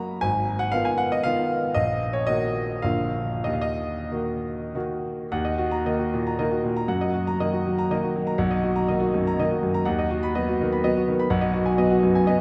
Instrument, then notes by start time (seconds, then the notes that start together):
grand piano
Already playing: F#3 A#3 F#4 A#5
0.21 G#1 G#5
0.59 F#5
0.72 D#3 B3 F4 F5
0.85 G#5
0.98 F#5
1.12 D#5
1.24 D#3 B3 F4 F5
1.74 A#1 D#5
2.13 C#5
2.27 D#3 A#3 F#4 D#5
2.82 A#1 D3 A#3 F4 F5
3.44 D#2 D#5
3.53 F5
3.61 D#5
4.11 D#3 A#3 F#4
4.75 D#3 A#3 F#4
5.32 D#2 F#5
5.45 D#5
5.58 F#4
5.71 A#5
5.85 D#3 A#3 D#5
5.99 F#4
6.14 A#2
6.27 A#5
6.39 D#3 A#3 D#5
6.51 F#4
6.64 A#2
6.76 A#5
6.88 F#2 F#5
7.01 D#5
7.14 F#4
7.27 A#5
7.40 D#3 A#3 D#5
7.53 F#4
7.66 F#3
7.78 A#5
7.91 D#3 A#3 D#5
8.03 F#4
8.16 F#3
8.27 A#5
8.38 B1 F#5
8.51 D#5
8.63 F#4
8.76 A#5
8.88 D#3 A#3 D#5
9.00 F#4
9.14 F#2
9.27 A#5
9.39 D#3 A#3 D#5
9.51 F#4
9.63 F#2
9.74 A#5
9.85 D#2 F#5
9.99 D#5
10.11 F#4
10.23 B5
10.35 F#3 B3 D#5
10.49 F#4
10.61 D#3
10.72 B5
10.84 F#3 B3 D#5
10.97 F#4
11.08 D#3
11.19 B5
11.30 B1 F#5
11.41 D#5
11.54 F#4
11.66 G#5
11.78 F#3 B3 D#5
11.90 F#4
12.03 F#2
12.15 G#5
12.27 F#3 B3 D#5
12.37 F#4